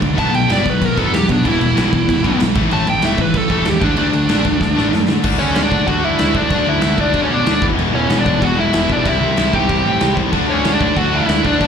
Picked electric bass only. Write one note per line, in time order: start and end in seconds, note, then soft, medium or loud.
0.02 0.15 C#2 medium
0.19 0.31 B1 loud
0.34 0.47 B1 medium
0.50 0.62 F#1 medium
0.66 0.78 B1 loud
0.82 0.94 B1 medium
0.98 1.10 F#1 medium
1.13 1.25 E2 medium
1.30 1.42 B2 medium
1.45 1.58 E1 loud
1.60 1.73 E1 medium
1.76 1.89 B1 medium
1.93 2.05 E1 loud
2.09 2.21 E1 medium
2.25 2.37 B1 medium
2.39 2.52 B1 medium
2.56 2.68 A1 medium
2.71 2.84 A1 loud
2.87 3.00 A1 medium
3.03 3.15 E1 medium
3.19 3.31 A1 loud
3.35 3.47 A1 medium
3.50 3.63 E1 loud
3.67 3.79 D#2 medium
3.82 3.94 D2 loud
3.99 4.11 D2 loud
4.14 4.26 D2 loud
4.30 4.43 A1 medium
4.45 4.58 D2 loud
4.61 4.74 D2 loud
4.78 4.90 A1 medium
4.94 5.06 F#2 loud
5.10 5.22 D3 medium
5.25 5.36 D2 loud
5.42 5.53 D2 loud
5.57 5.68 D2 medium
5.72 5.84 D2 loud
5.88 6.10 D2 loud
6.21 6.32 D2 medium
6.35 6.47 D2 medium
6.51 6.63 D2 loud
6.67 6.78 D2 loud
6.83 6.94 D2 loud
6.98 7.10 D2 loud
7.15 7.26 D2 loud
7.30 7.42 B2 loud
7.47 7.58 D2 medium
7.63 7.74 E1 loud
7.78 7.90 E1 loud
7.94 8.05 E1 loud
8.10 8.21 E1 medium
8.26 8.37 E1 medium
8.42 8.65 E1 medium
8.74 8.85 E1 medium
8.90 9.01 E1 medium
9.06 9.17 C2 loud
9.21 9.32 C2 medium
9.38 9.49 C2 medium
9.54 9.65 C2 loud
9.70 9.81 C2 medium
9.86 9.97 A2 medium
10.02 10.13 C2 medium
10.17 10.29 C2 loud
10.33 10.45 D2 medium
10.49 10.61 D2 medium
10.65 10.76 D2 medium
10.81 10.92 D2 medium
10.97 11.20 D2 loud
11.29 11.40 D2 medium
11.45 11.56 D2 loud
11.61 11.67 D2 loud